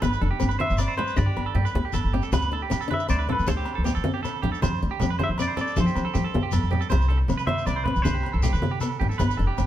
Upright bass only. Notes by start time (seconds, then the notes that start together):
0.02 G1
0.21 F1
0.42 G1
0.70 G1
1.18 G2
1.37 G1
1.55 G2
1.75 D2
1.94 G1
2.04 G1
2.32 D2
2.71 D3
3.10 D2
3.39 D2
3.49 D2
3.78 D2
3.97 D3
4.44 E2
4.63 F2
4.83 D2
5.02 F2
5.29 F2
5.78 F3
5.96 F2
6.15 F3
6.34 C2
6.53 F2
6.63 F2
6.92 C2
7.30 C3
7.67 C2
7.96 C2
8.06 C2
8.34 C2
8.54 C3
9.01 G#1
9.20 G1
9.39 F1
9.59 G1